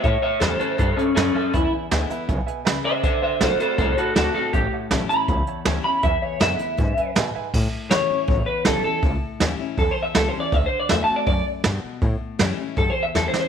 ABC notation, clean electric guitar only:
X:1
M:4/4
L:1/8
Q:1/4=160
K:Amix
V:1 name="Clean electric guitar"
[ce] [ce] [A=c] [Ac] [Ac] [^CA] [CA] [CA] | E z6 [=ce] | [=ce] [ce] [Ac] [Ac] [Ac] [FA] [FA] [FA] | G z2 b3 z b |
e c e4 z2 | z2 c3 B A A | z4 (3A =c e (3A c d | (3e =c d (3e a d d z3 |
z4 (3A =c e (3A c c |]